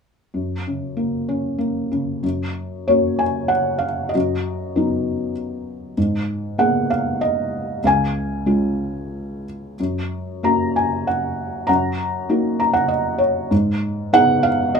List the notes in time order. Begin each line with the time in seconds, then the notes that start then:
0.34 F#2
0.67 C#3
0.97 A#3
1.29 C#4
1.58 A#3
1.92 C#3
2.23 F#2
2.88 A#3 C#4 F#4 C#5
3.19 G#5
3.48 F#5
3.78 F5
4.09 D#5
4.15 F#2 F#4
4.76 F#3 B3 D#4
5.98 G#2
6.58 A#3 B3 G#4 F#5
6.90 F5
7.21 D#5
7.84 C#2 F5 G#5
8.46 G#3 C#4 F4
9.80 F#2
10.43 A#3 C#4 F#4 A#5
10.76 G#5
11.07 F#5
11.67 F#2 F#5 A#5
12.29 A#3 D#4 F#4
12.60 A#5
12.73 F#5
12.88 D#5
13.18 C#5
13.51 G#2
14.13 B3 D#4 G#4 F#5
14.43 F5
14.75 D#5